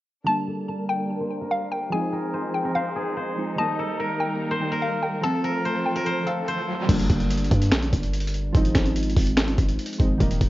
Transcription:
0.25 synth keys D3 G3 A#3, string section G3 A#3 D4 A#4, guzheng G4, synth pluck A5
0.29 synth keys D4
0.48 guzheng A4
0.68 guzheng A#4
0.89 synth pluck G5
1.20 guzheng C5
1.41 guzheng A#4
1.51 synth pluck F5
1.72 synth pluck G5
1.90 synth keys F3 G#3 C4, string section F3 C4 D#4 G#4, guzheng G#4, synth pluck G#5
1.95 synth keys D#4
2.13 guzheng A#4
2.34 guzheng C5
2.54 synth pluck G5
2.65 guzheng A#4
2.75 guzheng C5, synth pluck F5
2.96 guzheng G#4
3.17 guzheng C5
3.36 synth keys F3 G#3 C4 D#4
3.56 synth keys D#3 G3 A#3, string section G3 A#3 A#4, guzheng D#5, synth pluck A5
3.60 synth keys D#4
3.79 guzheng A4
3.99 guzheng A#4
4.20 synth pluck G5
4.51 guzheng C5
4.60 synth keys D#3 G3 A#3 D#4
4.72 guzheng A#4
4.82 synth pluck F5
5.03 synth pluck G5
5.21 synth keys F3 A3 C4, string section F3 A3 C4 A4, guzheng A4, synth pluck A5, riser
5.26 synth keys F4
5.44 guzheng A#4
5.65 guzheng C5
5.86 synth pluck G5
5.96 guzheng A#4
6.06 guzheng C5
6.27 guzheng A4, synth pluck F5
6.48 guzheng C5
6.87 808-style bass G1, synth keys D3 G3 A#3, kick, closed hi-hat, crash
6.91 synth keys D4
6.99 closed hi-hat
7.10 808-style bass G1, kick, closed hi-hat
7.20 closed hi-hat
7.30 closed hi-hat
7.37 closed hi-hat
7.44 closed hi-hat
7.51 808-style bass G2, kick, closed hi-hat
7.62 closed hi-hat
7.71 808-style bass A#1, finger snap, snare, closed hi-hat
7.82 closed hi-hat
7.93 808-style bass G1, kick, closed hi-hat
8.03 closed hi-hat
8.13 closed hi-hat
8.20 closed hi-hat
8.27 closed hi-hat
8.34 closed hi-hat
8.53 808-style bass G#1, synth keys F3 G#3 C4, kick, closed hi-hat
8.57 synth keys D#4
8.65 closed hi-hat
8.75 808-style bass G#1, finger snap, kick, snare, closed hi-hat
8.86 closed hi-hat
8.96 closed hi-hat
9.03 closed hi-hat
9.10 closed hi-hat
9.17 808-style bass G#1, kick, open hi-hat
9.27 closed hi-hat
9.37 finger snap, snare, closed hi-hat
9.48 closed hi-hat
9.58 808-style bass G#1, kick, closed hi-hat
9.68 closed hi-hat
9.79 closed hi-hat
9.86 closed hi-hat
9.93 closed hi-hat
9.98 808-style bass G#1, synth keys F3 G#3 C4 D#4, kick, closed hi-hat
10.18 808-style bass D#1, synth keys D#3 G3 A#3, kick, closed hi-hat
10.23 synth keys D#4
10.31 closed hi-hat
10.41 808-style bass D#1, kick, closed hi-hat

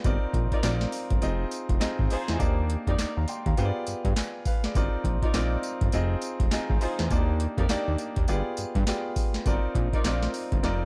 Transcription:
0.04 analog synth bass G1, grand piano C4 D#4 F4 A#4 D5, kick, closed hi-hat, tambourine
0.34 analog synth bass A#1, kick, closed hi-hat
0.52 string section D#4 F4 A#4 D5, kick, closed hi-hat
0.63 analog synth bass A#1, grand piano C4 D#4 F4 A#4 D5, snare, clap, closed hi-hat, tambourine
0.81 snare
0.92 open hi-hat, tambourine
1.10 analog synth bass G1, kick, closed hi-hat
1.22 analog synth bass F1, grand piano C4 D#4 F4 G#4 D#5, closed hi-hat, tambourine
1.51 closed hi-hat, tambourine
1.69 analog synth bass F1, kick, closed hi-hat
1.80 analog synth bass G#1, grand piano C4 D#4 F4 G#4 D#5, snare, clap, closed hi-hat, tambourine
1.99 analog synth bass G#1, kick
2.10 string section D#4 F4 G#4 C5, open hi-hat, tambourine
2.28 analog synth bass E2, snare, closed hi-hat
2.39 analog synth bass D#2, grand piano A#3 D4 D#4 G4 D5, kick, closed hi-hat, tambourine
2.70 closed hi-hat
2.87 analog synth bass F2, string section D#4 G4 A#4 D5, kick, closed hi-hat
2.99 analog synth bass D#2, snare, clap, closed hi-hat, tambourine
3.17 analog synth bass D#2, grand piano F5 A#5
3.28 grand piano G5 C6, closed hi-hat, tambourine
3.46 analog synth bass D#2, grand piano F5 A#5, kick, closed hi-hat
3.57 analog synth bass G2, grand piano B3 F4 G4 G#4 C5, closed hi-hat, tambourine
3.65 grand piano D5
3.86 analog synth bass G2, closed hi-hat, tambourine
4.05 analog synth bass G2, kick, closed hi-hat
4.16 grand piano D5 G#5, snare, clap, closed hi-hat, tambourine
4.45 grand piano B4 F5, kick, open hi-hat, tambourine
4.64 grand piano G#4 D5, snare, closed hi-hat
4.75 analog synth bass G1, grand piano C4 D#4 F4 A#4 D5, kick, closed hi-hat, tambourine
5.04 analog synth bass A#1, kick, closed hi-hat
5.22 string section D#4 F4 A#4 D5, kick, closed hi-hat
5.34 analog synth bass A#1, grand piano C4 D#4 F4 A#4 D5, snare, clap, closed hi-hat, tambourine
5.63 closed hi-hat, tambourine
5.81 analog synth bass G1, kick, closed hi-hat
5.92 analog synth bass F1, grand piano C4 D#4 F4 G#4 D#5, closed hi-hat, tambourine
6.22 closed hi-hat, tambourine
6.40 analog synth bass F1, kick, closed hi-hat
6.51 analog synth bass G#1, grand piano C4 D#4 F4 G#4 D#5 G#5, snare, clap, closed hi-hat, tambourine
6.70 analog synth bass G#1, grand piano F5, kick
6.81 string section D#4 F4 G#4 C5, grand piano D#5, open hi-hat, tambourine
6.99 analog synth bass E2, snare, closed hi-hat
7.10 analog synth bass D#2, grand piano A#3 D4 D#4 F4 D5, kick, closed hi-hat, tambourine
7.18 grand piano G4
7.40 closed hi-hat
7.58 analog synth bass F2, string section D#4 G4 A#4 D5, kick, closed hi-hat
7.69 analog synth bass D#2, grand piano A#3 D4 D#4 G4 D5, snare, clap, closed hi-hat, tambourine
7.88 analog synth bass D#2
7.98 closed hi-hat, tambourine
8.16 analog synth bass D#2, kick, closed hi-hat
8.28 analog synth bass G1, grand piano B3 F4 G4 G#4 D5, closed hi-hat, tambourine
8.57 analog synth bass G2, closed hi-hat, tambourine
8.75 analog synth bass G2, kick, closed hi-hat
8.87 grand piano B3 F4 G4 G#4 D5, snare, clap, closed hi-hat, tambourine
9.16 kick, open hi-hat, tambourine
9.34 snare, closed hi-hat
9.46 analog synth bass G1, grand piano C4 D4 F4 A#4 D5, kick, closed hi-hat, tambourine
9.53 grand piano D#4
9.75 analog synth bass A#1, kick, closed hi-hat
9.93 string section D#4 F4 A#4 D5, kick, closed hi-hat
10.05 analog synth bass A#1, grand piano C4 D#4 F4 A#4 D5, snare, clap, closed hi-hat, tambourine
10.23 snare
10.34 open hi-hat, tambourine
10.52 analog synth bass G1, kick, closed hi-hat
10.63 analog synth bass F1, grand piano C4 D#4 F4 A#4 D5, snare, closed hi-hat

